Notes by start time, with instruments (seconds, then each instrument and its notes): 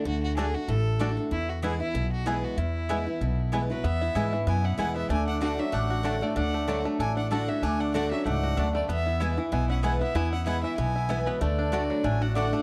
0.05 upright bass D2, steel-string acoustic guitar D3, fiddle F#4
0.23 fiddle F#4
0.37 steel-string acoustic guitar D3 A3 D4 F#4, mandolin A3 F#4 D5 A5, five-string banjo A3 D4 F#4, fiddle G#4
0.54 steel-string acoustic guitar D4 F#4, fiddle F#4
0.68 upright bass A1, steel-string acoustic guitar A2, fiddle A4
0.99 steel-string acoustic guitar D3 A3 D4 F#4, mandolin A3 F#4 D5 A5, five-string banjo A3 D4 F#4
1.17 steel-string acoustic guitar D4 F#4
1.31 steel-string acoustic guitar E2, upright bass E2, fiddle E4
1.49 fiddle F#4
1.62 steel-string acoustic guitar E3 G#3 B3 E4, mandolin B3 E4 B4 G#5, five-string banjo B3 E4, fiddle G#4
1.80 steel-string acoustic guitar B3 E4, fiddle E4
1.94 upright bass B1, steel-string acoustic guitar B2
2.12 fiddle F#4
2.26 steel-string acoustic guitar E3 G#3 B3 E4, mandolin B3 E4 B4 G#5, five-string banjo B3 E4, fiddle G#4
2.44 fiddle F#4
2.57 upright bass E2, steel-string acoustic guitar E2, fiddle E4
2.89 steel-string acoustic guitar E3 G#3 B3 E4, mandolin B3 E4 B4 G#5, five-string banjo B3 E4
3.07 steel-string acoustic guitar B3 E4
3.21 upright bass B1, steel-string acoustic guitar B2
3.52 steel-string acoustic guitar E3 G#3 B3 E4, mandolin B3 E4 B4 G#5, five-string banjo B3 E4
3.70 resonator guitar played with a steel bar F#3, steel-string acoustic guitar B3 E4, fiddle B4
3.84 upright bass E2, steel-string acoustic guitar E2, five-string banjo B3, resonator guitar played with a steel bar B3, fiddle E5
4.01 five-string banjo E4
4.15 upright bass G#2, steel-string acoustic guitar E3 G#3 B3 E4, mandolin B3 E4 B4 G#5, five-string banjo E4
4.33 five-string banjo E3, steel-string acoustic guitar B3 E4
4.47 upright bass F#2, steel-string acoustic guitar B2, five-string banjo B3, resonator guitar played with a steel bar E4, fiddle G#5
4.64 resonator guitar played with a steel bar C#4, five-string banjo E4, fiddle F#5
4.78 upright bass E2, steel-string acoustic guitar E3 G#3 B3 E4, mandolin B3 E4 B4 G#5, resonator guitar played with a steel bar B3, five-string banjo E4, fiddle F#5
4.96 five-string banjo B3, resonator guitar played with a steel bar B3, fiddle E5
5.09 upright bass D2, steel-string acoustic guitar D3, five-string banjo A3, resonator guitar played with a steel bar D4, fiddle G#5
5.27 resonator guitar played with a steel bar D4, fiddle F#5
5.41 steel-string acoustic guitar D3 A3 D4 F#4, mandolin A3 F#4 D5 A5, resonator guitar played with a steel bar D4, five-string banjo F#4, fiddle F#5
5.57 five-string banjo F#3, resonator guitar played with a steel bar C#4, steel-string acoustic guitar D4 F#4, fiddle E5
5.72 upright bass A1, steel-string acoustic guitar A2, five-string banjo A3, resonator guitar played with a steel bar D4, fiddle F#5
5.90 five-string banjo F#4
6.03 steel-string acoustic guitar D3 A3 D4 F#4, mandolin A3 F#4 D5 A5, five-string banjo D4
6.21 five-string banjo A3, resonator guitar played with a steel bar B3, steel-string acoustic guitar D4 F#4, fiddle D5
6.36 upright bass D2, steel-string acoustic guitar D3, resonator guitar played with a steel bar D4, five-string banjo D4, fiddle F#5
6.54 five-string banjo A3
6.68 steel-string acoustic guitar D3 A3 D4 F#4, five-string banjo F#3, mandolin A3 F#4 D5 A5
6.85 five-string banjo A3, steel-string acoustic guitar D4 F#4
6.99 upright bass A1, steel-string acoustic guitar A2, resonator guitar played with a steel bar D4, five-string banjo A4, fiddle G#5
7.17 five-string banjo D4, resonator guitar played with a steel bar D4, fiddle F#5
7.31 steel-string acoustic guitar D3 A3 D4 F#4, mandolin A3 F#4 D5 A5, resonator guitar played with a steel bar D4, five-string banjo A4, fiddle F#5
7.48 resonator guitar played with a steel bar C#4, steel-string acoustic guitar D4 F#4, five-string banjo F#4, fiddle E5
7.62 upright bass D2, steel-string acoustic guitar D3, five-string banjo A3, resonator guitar played with a steel bar D4, fiddle G#5
7.80 five-string banjo D4, resonator guitar played with a steel bar D4, fiddle F#5
7.94 steel-string acoustic guitar D3 A3 D4 F#4, mandolin A3 F#4 D5 A5, resonator guitar played with a steel bar D4, five-string banjo F#4, fiddle F#5
8.11 five-string banjo F#3, resonator guitar played with a steel bar C#4, steel-string acoustic guitar D4 F#4, fiddle E5
8.25 upright bass C#2, steel-string acoustic guitar G#2, five-string banjo A3, resonator guitar played with a steel bar D4, fiddle F#5
8.43 five-string banjo F#4
8.57 upright bass D2, steel-string acoustic guitar F#2, mandolin A3 F#4 D5 A5, five-string banjo D4
8.75 five-string banjo A3, resonator guitar played with a steel bar B3, fiddle D5
8.88 upright bass E2, steel-string acoustic guitar E2, five-string banjo B3, resonator guitar played with a steel bar B3, fiddle E5
9.06 five-string banjo E4
9.20 steel-string acoustic guitar E3 G#3 B3 E4, mandolin B3 E4 B4 G#5, five-string banjo E4
9.37 five-string banjo E3, steel-string acoustic guitar B3 E4
9.52 upright bass B1, steel-string acoustic guitar B2, five-string banjo B3, resonator guitar played with a steel bar E4, fiddle G#5
9.69 resonator guitar played with a steel bar C#4, five-string banjo E4, fiddle F#5
9.83 steel-string acoustic guitar E3 G#3 B3 E4, mandolin B3 E4 B4 G#5, resonator guitar played with a steel bar B3, five-string banjo E4, fiddle F#5
10.01 resonator guitar played with a steel bar B3, five-string banjo B3, steel-string acoustic guitar B3 E4, fiddle E5
10.14 upright bass E2, steel-string acoustic guitar E2, five-string banjo B3, resonator guitar played with a steel bar E4, fiddle G#5
10.32 resonator guitar played with a steel bar C#4, five-string banjo E4, fiddle F#5
10.46 steel-string acoustic guitar E3 G#3 B3 E4, mandolin B3 E4 B4 G#5, resonator guitar played with a steel bar B3, five-string banjo E4, fiddle F#5
10.63 five-string banjo E3, resonator guitar played with a steel bar B3, steel-string acoustic guitar B3 E4, fiddle E5
10.78 upright bass B1, steel-string acoustic guitar B2, five-string banjo B3, resonator guitar played with a steel bar E4, fiddle G#5
10.96 five-string banjo E4
11.09 steel-string acoustic guitar E3 G#3 B3 E4, mandolin B3 E4 B4 G#5, five-string banjo E4
11.26 resonator guitar played with a steel bar F#3, five-string banjo B3, fiddle B4
11.40 upright bass D2, steel-string acoustic guitar D3, five-string banjo A3, resonator guitar played with a steel bar A3, fiddle D5
11.59 five-string banjo D4
11.72 steel-string acoustic guitar D3 A3 D4 F#4, mandolin A3 F#4 D5 A5, five-string banjo F#4
11.90 five-string banjo F#3
12.04 upright bass A1, steel-string acoustic guitar A2, five-string banjo A3, resonator guitar played with a steel bar D4, fiddle G#5
12.21 resonator guitar played with a steel bar D4, five-string banjo F#4, fiddle F#5
12.35 steel-string acoustic guitar D3 A3 D4 F#4, mandolin A3 F#4 D5 A5, resonator guitar played with a steel bar D4, five-string banjo D4, fiddle F#5
12.53 five-string banjo A3, steel-string acoustic guitar D4 F#4